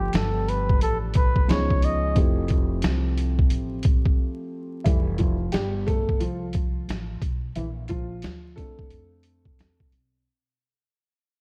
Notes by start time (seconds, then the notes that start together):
Already playing: G1 F3 A3 B3 D4 G4
0.13 G1 A4, snare, closed hi-hat
0.48 B4, closed hi-hat
0.69 kick
0.81 A1 A4, closed hi-hat
1.14 B4, kick, closed hi-hat
1.36 kick
1.48 C#2 F3 B3 C#4 D#4 G#4 C#5, snare, closed hi-hat
1.70 kick
1.82 D#5, closed hi-hat
2.15 F1 F3 A3 C4 E4 G4, kick, closed hi-hat
2.48 kick, closed hi-hat
2.82 C2, snare, closed hi-hat
3.18 closed hi-hat
3.39 kick
3.50 A1, closed hi-hat
3.83 kick, closed hi-hat
4.05 kick
4.84 F1 E3 G3 A3 E4, kick, closed hi-hat
5.18 F3 F4, kick, closed hi-hat
5.52 G1 G3 G4, snare, closed hi-hat
5.86 A3 A4, kick, closed hi-hat
6.09 kick
6.20 C2 F3 F4, closed hi-hat
6.53 kick, closed hi-hat
6.88 A1, snare, closed hi-hat
7.22 B1, kick, closed hi-hat
7.55 A#1 E3 E4, closed hi-hat
7.88 F3 F4, kick, closed hi-hat
8.22 D2, snare, closed hi-hat
8.56 A3 C4 D4 A4, kick, closed hi-hat
8.79 kick
8.90 F2, closed hi-hat
9.23 closed hi-hat
9.45 kick
9.59 E2, snare, closed hi-hat
9.80 kick
9.92 B1, closed hi-hat